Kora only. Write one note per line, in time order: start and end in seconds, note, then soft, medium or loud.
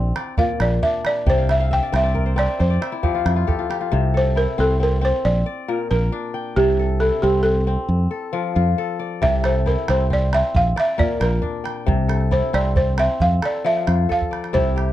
0.00 1.52 C4 medium
0.00 0.18 D4 medium
0.00 0.62 E4 medium
0.00 0.15 A4 medium
0.16 0.37 D5 medium
0.38 1.32 A#2 medium
0.38 1.49 D5 medium
0.83 2.50 D4 medium
1.27 2.65 C3 medium
1.27 2.20 G5 medium
1.38 1.60 F5 medium
1.49 1.70 E5 medium
1.60 1.99 F5 medium
1.71 1.92 E5 medium
1.83 2.03 D5 medium
1.92 2.36 C4 medium
1.92 2.48 E5 medium
2.04 2.36 D5 medium
2.15 3.42 A#4 medium
2.26 2.59 C5 medium
2.36 4.16 C4 medium
2.36 2.70 D5 medium
2.48 2.81 E5 medium
2.59 3.78 C5 medium
2.70 3.81 D5 medium
2.81 3.09 E5 medium
2.92 3.20 E4 medium
3.03 3.97 F3 medium
3.03 3.47 G4 medium
3.14 3.36 F4 medium
3.26 3.65 E4 medium
3.36 3.58 F4 medium
3.47 3.69 G4 medium
3.47 4.14 A4 medium
3.59 3.80 F4 medium
3.70 5.11 G4 medium
3.81 4.42 F4 medium
3.92 5.29 C3 medium
4.14 5.46 A4 medium
4.36 5.92 E4 medium
4.58 4.79 C4 medium
4.80 5.01 C4 medium
5.01 6.81 C4 medium
5.46 6.57 D5 medium
5.68 6.62 A#2 medium
5.68 5.91 A#4 medium
5.91 6.85 A#4 medium
6.12 7.80 D4 medium
6.34 7.27 G5 medium
6.57 7.94 C3 medium
6.79 8.10 A4 medium
7.01 8.39 E4 medium
7.23 7.44 C4 medium
7.45 7.67 C4 medium
7.67 9.47 C4 medium
8.11 8.78 A4 medium
8.33 9.27 F3 medium
8.33 8.55 F4 medium
8.56 9.72 F4 medium
8.78 9.43 A4 medium
8.99 10.10 D5 medium
9.22 10.60 C3 medium
9.43 10.75 A4 medium
9.66 11.23 E4 medium
9.88 10.10 C4 medium
10.10 10.32 C4 medium
10.33 12.13 C4 medium
10.76 11.87 D5 medium
10.98 11.93 A#2 medium
10.98 11.20 A#4 medium
11.20 12.14 A#4 medium
11.42 13.10 D4 medium
11.64 12.57 G5 medium
11.86 13.26 C3 medium
12.08 13.40 A4 medium
12.31 13.70 E4 medium
12.53 12.75 C4 medium
12.76 12.98 C4 medium
12.98 14.78 C4 medium
13.43 14.09 A4 medium
13.64 14.59 F3 medium
13.87 14.60 F4 medium
14.09 14.93 A4 medium
14.31 14.93 D5 medium
14.53 14.93 C3 medium
14.53 14.93 E4 medium
14.76 14.93 G4 medium